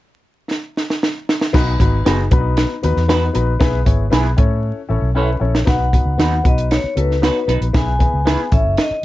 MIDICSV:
0, 0, Header, 1, 7, 480
1, 0, Start_track
1, 0, Tempo, 517241
1, 1427, Time_signature, 4, 2, 24, 8
1, 8397, End_track
2, 0, Start_track
2, 0, Title_t, "Vibraphone"
2, 0, Program_c, 0, 11
2, 5270, Note_on_c, 0, 78, 93
2, 6001, Note_on_c, 0, 75, 74
2, 6010, Note_off_c, 0, 78, 0
2, 6106, Note_off_c, 0, 75, 0
2, 6228, Note_on_c, 0, 73, 79
2, 6451, Note_off_c, 0, 73, 0
2, 6481, Note_on_c, 0, 71, 73
2, 6921, Note_off_c, 0, 71, 0
2, 7211, Note_on_c, 0, 80, 95
2, 7882, Note_off_c, 0, 80, 0
2, 7922, Note_on_c, 0, 76, 78
2, 8139, Note_off_c, 0, 76, 0
2, 8161, Note_on_c, 0, 75, 81
2, 8397, Note_off_c, 0, 75, 0
2, 8397, End_track
3, 0, Start_track
3, 0, Title_t, "Clean electric guitar"
3, 0, Program_c, 1, 27
3, 1906, Note_on_c, 1, 59, 74
3, 1912, Note_on_c, 1, 63, 75
3, 1917, Note_on_c, 1, 66, 79
3, 1925, Note_on_c, 1, 71, 84
3, 2030, Note_off_c, 1, 59, 0
3, 2033, Note_off_c, 1, 63, 0
3, 2035, Note_off_c, 1, 66, 0
3, 2039, Note_off_c, 1, 71, 0
3, 2865, Note_on_c, 1, 59, 84
3, 2873, Note_on_c, 1, 63, 81
3, 2879, Note_on_c, 1, 66, 85
3, 2884, Note_on_c, 1, 71, 94
3, 2989, Note_off_c, 1, 59, 0
3, 2993, Note_off_c, 1, 63, 0
3, 2996, Note_off_c, 1, 66, 0
3, 2999, Note_off_c, 1, 71, 0
3, 3825, Note_on_c, 1, 59, 80
3, 3831, Note_on_c, 1, 64, 77
3, 3838, Note_on_c, 1, 68, 75
3, 3843, Note_on_c, 1, 71, 74
3, 3949, Note_off_c, 1, 59, 0
3, 3952, Note_off_c, 1, 64, 0
3, 3956, Note_off_c, 1, 68, 0
3, 3958, Note_off_c, 1, 71, 0
3, 4783, Note_on_c, 1, 61, 70
3, 4790, Note_on_c, 1, 64, 76
3, 4795, Note_on_c, 1, 69, 82
3, 4802, Note_on_c, 1, 73, 75
3, 4908, Note_off_c, 1, 61, 0
3, 4912, Note_off_c, 1, 64, 0
3, 4914, Note_off_c, 1, 69, 0
3, 4917, Note_off_c, 1, 73, 0
3, 5741, Note_on_c, 1, 59, 71
3, 5748, Note_on_c, 1, 63, 73
3, 5754, Note_on_c, 1, 66, 78
3, 5761, Note_on_c, 1, 71, 76
3, 5867, Note_off_c, 1, 59, 0
3, 5871, Note_off_c, 1, 63, 0
3, 5874, Note_off_c, 1, 66, 0
3, 5877, Note_off_c, 1, 71, 0
3, 6703, Note_on_c, 1, 59, 73
3, 6710, Note_on_c, 1, 63, 77
3, 6716, Note_on_c, 1, 66, 80
3, 6721, Note_on_c, 1, 71, 83
3, 6828, Note_off_c, 1, 59, 0
3, 6832, Note_off_c, 1, 63, 0
3, 6835, Note_off_c, 1, 66, 0
3, 6837, Note_off_c, 1, 71, 0
3, 6941, Note_on_c, 1, 59, 52
3, 6947, Note_on_c, 1, 63, 53
3, 6953, Note_on_c, 1, 66, 56
3, 6959, Note_on_c, 1, 71, 60
3, 7040, Note_off_c, 1, 59, 0
3, 7044, Note_off_c, 1, 63, 0
3, 7047, Note_off_c, 1, 66, 0
3, 7050, Note_off_c, 1, 71, 0
3, 7663, Note_on_c, 1, 59, 77
3, 7669, Note_on_c, 1, 64, 76
3, 7676, Note_on_c, 1, 68, 75
3, 7680, Note_on_c, 1, 71, 84
3, 7788, Note_off_c, 1, 59, 0
3, 7792, Note_off_c, 1, 64, 0
3, 7795, Note_off_c, 1, 68, 0
3, 7797, Note_off_c, 1, 71, 0
3, 8397, End_track
4, 0, Start_track
4, 0, Title_t, "Upright piano"
4, 0, Program_c, 2, 0
4, 1422, Note_on_c, 2, 59, 97
4, 1428, Note_on_c, 2, 63, 93
4, 1431, Note_on_c, 2, 66, 93
4, 1437, Note_on_c, 2, 71, 104
4, 1591, Note_off_c, 2, 59, 0
4, 1594, Note_off_c, 2, 63, 0
4, 1596, Note_off_c, 2, 66, 0
4, 1599, Note_off_c, 2, 71, 0
4, 1664, Note_on_c, 2, 59, 79
4, 1671, Note_on_c, 2, 63, 71
4, 1675, Note_on_c, 2, 66, 74
4, 1682, Note_on_c, 2, 71, 88
4, 1832, Note_off_c, 2, 59, 0
4, 1836, Note_off_c, 2, 63, 0
4, 1838, Note_off_c, 2, 66, 0
4, 1841, Note_off_c, 2, 71, 0
4, 1906, Note_on_c, 2, 59, 74
4, 1913, Note_on_c, 2, 63, 72
4, 1916, Note_on_c, 2, 66, 69
4, 1922, Note_on_c, 2, 68, 87
4, 2073, Note_off_c, 2, 59, 0
4, 2077, Note_off_c, 2, 63, 0
4, 2078, Note_off_c, 2, 66, 0
4, 2081, Note_off_c, 2, 68, 0
4, 2145, Note_on_c, 2, 59, 83
4, 2149, Note_on_c, 2, 62, 60
4, 2154, Note_on_c, 2, 66, 70
4, 2160, Note_on_c, 2, 71, 91
4, 2206, Note_off_c, 2, 62, 0
4, 2208, Note_on_c, 2, 63, 78
4, 2530, Note_off_c, 2, 59, 0
4, 2534, Note_off_c, 2, 66, 0
4, 2538, Note_off_c, 2, 71, 0
4, 2562, Note_off_c, 2, 63, 0
4, 2623, Note_on_c, 2, 59, 78
4, 2629, Note_on_c, 2, 63, 72
4, 2632, Note_on_c, 2, 66, 72
4, 2637, Note_on_c, 2, 71, 89
4, 2792, Note_off_c, 2, 59, 0
4, 2795, Note_off_c, 2, 63, 0
4, 2796, Note_off_c, 2, 66, 0
4, 2799, Note_off_c, 2, 71, 0
4, 2859, Note_on_c, 2, 59, 80
4, 2865, Note_on_c, 2, 63, 72
4, 2868, Note_on_c, 2, 66, 74
4, 2872, Note_on_c, 2, 71, 86
4, 3030, Note_off_c, 2, 59, 0
4, 3033, Note_off_c, 2, 63, 0
4, 3034, Note_off_c, 2, 66, 0
4, 3036, Note_off_c, 2, 71, 0
4, 3095, Note_on_c, 2, 59, 75
4, 3100, Note_on_c, 2, 63, 74
4, 3105, Note_on_c, 2, 66, 71
4, 3111, Note_on_c, 2, 71, 89
4, 3268, Note_off_c, 2, 59, 0
4, 3270, Note_off_c, 2, 63, 0
4, 3273, Note_off_c, 2, 66, 0
4, 3276, Note_off_c, 2, 71, 0
4, 3337, Note_on_c, 2, 59, 102
4, 3343, Note_on_c, 2, 64, 88
4, 3346, Note_on_c, 2, 68, 94
4, 3349, Note_on_c, 2, 71, 107
4, 3509, Note_off_c, 2, 59, 0
4, 3512, Note_off_c, 2, 64, 0
4, 3513, Note_off_c, 2, 68, 0
4, 3515, Note_off_c, 2, 71, 0
4, 3574, Note_on_c, 2, 59, 75
4, 3576, Note_on_c, 2, 64, 74
4, 3580, Note_on_c, 2, 68, 72
4, 3587, Note_on_c, 2, 73, 85
4, 3747, Note_off_c, 2, 59, 0
4, 3748, Note_off_c, 2, 64, 0
4, 3750, Note_off_c, 2, 68, 0
4, 3753, Note_off_c, 2, 73, 0
4, 3808, Note_on_c, 2, 59, 79
4, 3811, Note_on_c, 2, 64, 73
4, 3818, Note_on_c, 2, 68, 74
4, 3821, Note_on_c, 2, 71, 86
4, 3984, Note_off_c, 2, 59, 0
4, 3986, Note_off_c, 2, 64, 0
4, 3989, Note_off_c, 2, 68, 0
4, 3991, Note_off_c, 2, 71, 0
4, 4051, Note_on_c, 2, 61, 83
4, 4055, Note_on_c, 2, 64, 73
4, 4060, Note_on_c, 2, 69, 72
4, 4068, Note_on_c, 2, 73, 91
4, 4443, Note_off_c, 2, 61, 0
4, 4445, Note_off_c, 2, 64, 0
4, 4447, Note_off_c, 2, 69, 0
4, 4452, Note_off_c, 2, 73, 0
4, 4533, Note_on_c, 2, 61, 78
4, 4534, Note_on_c, 2, 64, 71
4, 4544, Note_on_c, 2, 69, 75
4, 4549, Note_on_c, 2, 73, 87
4, 4707, Note_off_c, 2, 61, 0
4, 4707, Note_off_c, 2, 64, 0
4, 4712, Note_off_c, 2, 69, 0
4, 4715, Note_off_c, 2, 73, 0
4, 4776, Note_on_c, 2, 61, 78
4, 4778, Note_on_c, 2, 64, 72
4, 4786, Note_on_c, 2, 69, 72
4, 4790, Note_on_c, 2, 71, 85
4, 4948, Note_off_c, 2, 61, 0
4, 4949, Note_off_c, 2, 64, 0
4, 4953, Note_off_c, 2, 69, 0
4, 4955, Note_off_c, 2, 71, 0
4, 5009, Note_on_c, 2, 61, 74
4, 5013, Note_on_c, 2, 64, 69
4, 5020, Note_on_c, 2, 69, 73
4, 5023, Note_on_c, 2, 73, 82
4, 5185, Note_off_c, 2, 61, 0
4, 5187, Note_off_c, 2, 64, 0
4, 5190, Note_off_c, 2, 69, 0
4, 5192, Note_off_c, 2, 73, 0
4, 5244, Note_on_c, 2, 59, 79
4, 5251, Note_on_c, 2, 63, 74
4, 5255, Note_on_c, 2, 66, 73
4, 5260, Note_on_c, 2, 71, 89
4, 5422, Note_off_c, 2, 59, 0
4, 5425, Note_off_c, 2, 63, 0
4, 5428, Note_off_c, 2, 66, 0
4, 5430, Note_off_c, 2, 71, 0
4, 5500, Note_on_c, 2, 59, 65
4, 5505, Note_on_c, 2, 63, 60
4, 5506, Note_on_c, 2, 66, 59
4, 5513, Note_on_c, 2, 71, 70
4, 5670, Note_off_c, 2, 59, 0
4, 5672, Note_off_c, 2, 63, 0
4, 5673, Note_off_c, 2, 66, 0
4, 5677, Note_off_c, 2, 71, 0
4, 5732, Note_on_c, 2, 59, 67
4, 5738, Note_on_c, 2, 63, 61
4, 5742, Note_on_c, 2, 66, 60
4, 5747, Note_on_c, 2, 71, 69
4, 5906, Note_off_c, 2, 59, 0
4, 5909, Note_off_c, 2, 63, 0
4, 5911, Note_off_c, 2, 66, 0
4, 5914, Note_off_c, 2, 71, 0
4, 5973, Note_on_c, 2, 59, 66
4, 5975, Note_on_c, 2, 63, 58
4, 5980, Note_on_c, 2, 66, 65
4, 5987, Note_on_c, 2, 71, 75
4, 6364, Note_off_c, 2, 59, 0
4, 6365, Note_off_c, 2, 63, 0
4, 6368, Note_off_c, 2, 66, 0
4, 6371, Note_off_c, 2, 71, 0
4, 6456, Note_on_c, 2, 59, 67
4, 6460, Note_on_c, 2, 63, 60
4, 6468, Note_on_c, 2, 66, 61
4, 6469, Note_on_c, 2, 69, 76
4, 6628, Note_off_c, 2, 59, 0
4, 6630, Note_off_c, 2, 63, 0
4, 6634, Note_off_c, 2, 66, 0
4, 6635, Note_off_c, 2, 69, 0
4, 6692, Note_on_c, 2, 59, 65
4, 6693, Note_on_c, 2, 63, 63
4, 6699, Note_on_c, 2, 66, 57
4, 6708, Note_on_c, 2, 73, 73
4, 6866, Note_off_c, 2, 59, 0
4, 6867, Note_off_c, 2, 63, 0
4, 6870, Note_off_c, 2, 66, 0
4, 6874, Note_off_c, 2, 73, 0
4, 6934, Note_on_c, 2, 59, 67
4, 6937, Note_on_c, 2, 63, 58
4, 6945, Note_on_c, 2, 66, 57
4, 6947, Note_on_c, 2, 71, 69
4, 7107, Note_off_c, 2, 59, 0
4, 7109, Note_off_c, 2, 63, 0
4, 7113, Note_off_c, 2, 66, 0
4, 7114, Note_off_c, 2, 71, 0
4, 7177, Note_on_c, 2, 59, 86
4, 7180, Note_on_c, 2, 64, 77
4, 7188, Note_on_c, 2, 68, 74
4, 7189, Note_on_c, 2, 71, 90
4, 7349, Note_off_c, 2, 59, 0
4, 7350, Note_off_c, 2, 64, 0
4, 7354, Note_off_c, 2, 68, 0
4, 7355, Note_off_c, 2, 71, 0
4, 7414, Note_on_c, 2, 59, 70
4, 7420, Note_on_c, 2, 64, 61
4, 7426, Note_on_c, 2, 68, 64
4, 7427, Note_on_c, 2, 71, 75
4, 7587, Note_off_c, 2, 59, 0
4, 7590, Note_off_c, 2, 64, 0
4, 7593, Note_off_c, 2, 68, 0
4, 7594, Note_off_c, 2, 71, 0
4, 7656, Note_on_c, 2, 59, 70
4, 7661, Note_on_c, 2, 64, 61
4, 7667, Note_on_c, 2, 68, 60
4, 7670, Note_on_c, 2, 71, 75
4, 7829, Note_off_c, 2, 59, 0
4, 7831, Note_off_c, 2, 64, 0
4, 7834, Note_off_c, 2, 68, 0
4, 7836, Note_off_c, 2, 71, 0
4, 7898, Note_on_c, 2, 61, 71
4, 7905, Note_on_c, 2, 64, 63
4, 7909, Note_on_c, 2, 69, 62
4, 7910, Note_on_c, 2, 73, 75
4, 8287, Note_off_c, 2, 61, 0
4, 8291, Note_off_c, 2, 64, 0
4, 8293, Note_off_c, 2, 69, 0
4, 8293, Note_off_c, 2, 73, 0
4, 8397, End_track
5, 0, Start_track
5, 0, Title_t, "Fingered electric bass"
5, 0, Program_c, 3, 33
5, 1430, Note_on_c, 3, 35, 91
5, 1630, Note_off_c, 3, 35, 0
5, 1670, Note_on_c, 3, 32, 82
5, 1869, Note_off_c, 3, 32, 0
5, 1914, Note_on_c, 3, 30, 88
5, 2112, Note_off_c, 3, 30, 0
5, 2151, Note_on_c, 3, 35, 88
5, 2450, Note_off_c, 3, 35, 0
5, 2634, Note_on_c, 3, 39, 77
5, 2731, Note_off_c, 3, 39, 0
5, 2752, Note_on_c, 3, 40, 75
5, 3051, Note_off_c, 3, 40, 0
5, 3112, Note_on_c, 3, 34, 81
5, 3310, Note_off_c, 3, 34, 0
5, 3347, Note_on_c, 3, 35, 93
5, 3547, Note_off_c, 3, 35, 0
5, 3586, Note_on_c, 3, 32, 80
5, 3787, Note_off_c, 3, 32, 0
5, 3821, Note_on_c, 3, 35, 89
5, 4024, Note_off_c, 3, 35, 0
5, 4068, Note_on_c, 3, 45, 91
5, 4369, Note_off_c, 3, 45, 0
5, 4543, Note_on_c, 3, 33, 71
5, 4645, Note_off_c, 3, 33, 0
5, 4658, Note_on_c, 3, 35, 74
5, 4962, Note_off_c, 3, 35, 0
5, 5019, Note_on_c, 3, 34, 76
5, 5223, Note_off_c, 3, 34, 0
5, 5267, Note_on_c, 3, 35, 92
5, 5568, Note_off_c, 3, 35, 0
5, 5617, Note_on_c, 3, 37, 71
5, 5721, Note_off_c, 3, 37, 0
5, 5733, Note_on_c, 3, 39, 79
5, 5940, Note_off_c, 3, 39, 0
5, 5984, Note_on_c, 3, 35, 87
5, 6286, Note_off_c, 3, 35, 0
5, 6464, Note_on_c, 3, 37, 79
5, 6766, Note_off_c, 3, 37, 0
5, 6941, Note_on_c, 3, 35, 79
5, 7044, Note_off_c, 3, 35, 0
5, 7064, Note_on_c, 3, 34, 81
5, 7166, Note_off_c, 3, 34, 0
5, 7188, Note_on_c, 3, 35, 81
5, 7489, Note_off_c, 3, 35, 0
5, 7549, Note_on_c, 3, 37, 70
5, 7749, Note_off_c, 3, 37, 0
5, 7907, Note_on_c, 3, 33, 94
5, 8008, Note_off_c, 3, 33, 0
5, 8026, Note_on_c, 3, 30, 79
5, 8127, Note_off_c, 3, 30, 0
5, 8397, End_track
6, 0, Start_track
6, 0, Title_t, "Muted fingered electric bass strokes"
6, 6345, Note_on_c, 9, 29, 42
6, 6438, Note_off_c, 9, 29, 0
6, 8264, Note_on_c, 9, 29, 41
6, 8357, Note_off_c, 9, 29, 0
6, 8397, End_track
7, 0, Start_track
7, 0, Title_t, "Drums"
7, 474, Note_on_c, 9, 38, 54
7, 567, Note_off_c, 9, 38, 0
7, 717, Note_on_c, 9, 38, 62
7, 810, Note_off_c, 9, 38, 0
7, 837, Note_on_c, 9, 38, 63
7, 930, Note_off_c, 9, 38, 0
7, 956, Note_on_c, 9, 38, 85
7, 1049, Note_off_c, 9, 38, 0
7, 1197, Note_on_c, 9, 38, 97
7, 1290, Note_off_c, 9, 38, 0
7, 1312, Note_on_c, 9, 38, 87
7, 1405, Note_off_c, 9, 38, 0
7, 1431, Note_on_c, 9, 36, 106
7, 1432, Note_on_c, 9, 49, 82
7, 1436, Note_on_c, 9, 38, 104
7, 1524, Note_off_c, 9, 36, 0
7, 1525, Note_off_c, 9, 49, 0
7, 1529, Note_off_c, 9, 38, 0
7, 1670, Note_on_c, 9, 36, 79
7, 1676, Note_on_c, 9, 42, 77
7, 1763, Note_off_c, 9, 36, 0
7, 1768, Note_off_c, 9, 42, 0
7, 1914, Note_on_c, 9, 42, 89
7, 1915, Note_on_c, 9, 38, 108
7, 2007, Note_off_c, 9, 42, 0
7, 2008, Note_off_c, 9, 38, 0
7, 2146, Note_on_c, 9, 42, 69
7, 2150, Note_on_c, 9, 36, 100
7, 2239, Note_off_c, 9, 42, 0
7, 2243, Note_off_c, 9, 36, 0
7, 2384, Note_on_c, 9, 42, 73
7, 2391, Note_on_c, 9, 38, 98
7, 2477, Note_off_c, 9, 42, 0
7, 2484, Note_off_c, 9, 38, 0
7, 2630, Note_on_c, 9, 42, 65
7, 2723, Note_off_c, 9, 42, 0
7, 2752, Note_on_c, 9, 38, 29
7, 2845, Note_off_c, 9, 38, 0
7, 2870, Note_on_c, 9, 38, 104
7, 2875, Note_on_c, 9, 42, 86
7, 2963, Note_off_c, 9, 38, 0
7, 2968, Note_off_c, 9, 42, 0
7, 3106, Note_on_c, 9, 42, 75
7, 3199, Note_off_c, 9, 42, 0
7, 3346, Note_on_c, 9, 42, 85
7, 3347, Note_on_c, 9, 36, 110
7, 3350, Note_on_c, 9, 38, 104
7, 3439, Note_off_c, 9, 42, 0
7, 3440, Note_off_c, 9, 36, 0
7, 3442, Note_off_c, 9, 38, 0
7, 3586, Note_on_c, 9, 36, 84
7, 3586, Note_on_c, 9, 42, 78
7, 3679, Note_off_c, 9, 36, 0
7, 3679, Note_off_c, 9, 42, 0
7, 3829, Note_on_c, 9, 42, 90
7, 3831, Note_on_c, 9, 38, 112
7, 3922, Note_off_c, 9, 42, 0
7, 3923, Note_off_c, 9, 38, 0
7, 4063, Note_on_c, 9, 42, 71
7, 4066, Note_on_c, 9, 36, 97
7, 4155, Note_off_c, 9, 42, 0
7, 4159, Note_off_c, 9, 36, 0
7, 5149, Note_on_c, 9, 38, 83
7, 5241, Note_off_c, 9, 38, 0
7, 5264, Note_on_c, 9, 36, 102
7, 5264, Note_on_c, 9, 42, 80
7, 5267, Note_on_c, 9, 38, 93
7, 5356, Note_off_c, 9, 42, 0
7, 5357, Note_off_c, 9, 36, 0
7, 5360, Note_off_c, 9, 38, 0
7, 5505, Note_on_c, 9, 36, 76
7, 5510, Note_on_c, 9, 42, 73
7, 5598, Note_off_c, 9, 36, 0
7, 5602, Note_off_c, 9, 42, 0
7, 5749, Note_on_c, 9, 42, 82
7, 5750, Note_on_c, 9, 38, 106
7, 5841, Note_off_c, 9, 42, 0
7, 5843, Note_off_c, 9, 38, 0
7, 5986, Note_on_c, 9, 36, 94
7, 5986, Note_on_c, 9, 42, 64
7, 6078, Note_off_c, 9, 36, 0
7, 6079, Note_off_c, 9, 42, 0
7, 6106, Note_on_c, 9, 42, 51
7, 6199, Note_off_c, 9, 42, 0
7, 6226, Note_on_c, 9, 42, 66
7, 6234, Note_on_c, 9, 38, 96
7, 6319, Note_off_c, 9, 42, 0
7, 6327, Note_off_c, 9, 38, 0
7, 6468, Note_on_c, 9, 42, 60
7, 6561, Note_off_c, 9, 42, 0
7, 6600, Note_on_c, 9, 38, 28
7, 6692, Note_off_c, 9, 38, 0
7, 6711, Note_on_c, 9, 38, 102
7, 6717, Note_on_c, 9, 42, 81
7, 6804, Note_off_c, 9, 38, 0
7, 6809, Note_off_c, 9, 42, 0
7, 6950, Note_on_c, 9, 42, 75
7, 7043, Note_off_c, 9, 42, 0
7, 7070, Note_on_c, 9, 42, 41
7, 7163, Note_off_c, 9, 42, 0
7, 7186, Note_on_c, 9, 42, 82
7, 7187, Note_on_c, 9, 36, 101
7, 7190, Note_on_c, 9, 38, 103
7, 7279, Note_off_c, 9, 42, 0
7, 7280, Note_off_c, 9, 36, 0
7, 7283, Note_off_c, 9, 38, 0
7, 7426, Note_on_c, 9, 36, 74
7, 7428, Note_on_c, 9, 42, 72
7, 7519, Note_off_c, 9, 36, 0
7, 7521, Note_off_c, 9, 42, 0
7, 7673, Note_on_c, 9, 42, 85
7, 7674, Note_on_c, 9, 38, 109
7, 7766, Note_off_c, 9, 42, 0
7, 7767, Note_off_c, 9, 38, 0
7, 7904, Note_on_c, 9, 42, 64
7, 7908, Note_on_c, 9, 36, 98
7, 7997, Note_off_c, 9, 42, 0
7, 8001, Note_off_c, 9, 36, 0
7, 8143, Note_on_c, 9, 42, 68
7, 8150, Note_on_c, 9, 38, 96
7, 8235, Note_off_c, 9, 42, 0
7, 8243, Note_off_c, 9, 38, 0
7, 8397, End_track
0, 0, End_of_file